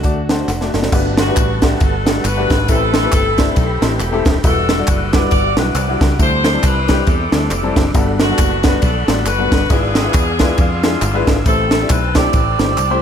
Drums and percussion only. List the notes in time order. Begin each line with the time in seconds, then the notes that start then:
0.04 kick, closed hi-hat, tambourine
0.29 snare, closed hi-hat, tambourine
0.48 snare, clap, tambourine
0.61 snare
0.74 snare, tambourine
0.83 snare
0.92 kick, crash, tambourine
1.17 snare, ride, tambourine
1.36 kick, clap, ride, tambourine
1.62 kick, snare, ride, tambourine
1.80 kick, ride, tambourine
2.06 snare, ride, tambourine
2.25 clap, ride, tambourine
2.50 kick, snare, ride, tambourine
2.68 kick, ride, tambourine
2.94 snare, ride, tambourine
3.12 kick, clap, ride, tambourine
3.38 kick, snare, ride, tambourine
3.56 kick, ride, tambourine
3.82 snare, ride, tambourine
4.00 clap, ride, tambourine
4.25 kick, snare, ride, tambourine
4.44 kick, ride, tambourine
4.69 snare, ride, tambourine
4.87 kick, clap, ride, tambourine
5.13 kick, snare, ride, tambourine
5.31 kick, ride, tambourine
5.57 snare, ride, tambourine
5.75 clap, ride, tambourine
6.01 kick, snare, ride, tambourine
6.19 kick, ride, tambourine
6.44 snare, clap, ride, tambourine
6.63 kick, clap, ride, tambourine
6.88 kick, snare, ride, tambourine
7.07 kick, ride, tambourine
7.32 snare, ride, tambourine
7.50 clap, ride, tambourine
7.76 kick, snare, ride, tambourine
7.94 kick, ride, tambourine
8.20 snare, ride, tambourine
8.38 kick, clap, ride, tambourine
8.63 kick, snare, ride, tambourine
8.82 kick, ride, tambourine
9.08 snare, ride, tambourine
9.26 clap, ride, tambourine
9.52 kick, snare, ride, tambourine
9.70 kick, ride, tambourine
9.95 snare, ride, tambourine
10.13 kick, clap, ride, tambourine
10.39 kick, snare, ride, tambourine
10.58 kick, ride, tambourine
10.83 snare, ride, tambourine
11.01 clap, ride, tambourine
11.27 kick, snare, ride, tambourine
11.46 kick, ride, tambourine
11.71 snare, ride, tambourine
11.89 kick, clap, ride, tambourine
12.15 kick, snare, ride, tambourine
12.33 kick, ride, tambourine
12.59 snare, ride, tambourine
12.77 clap, ride, tambourine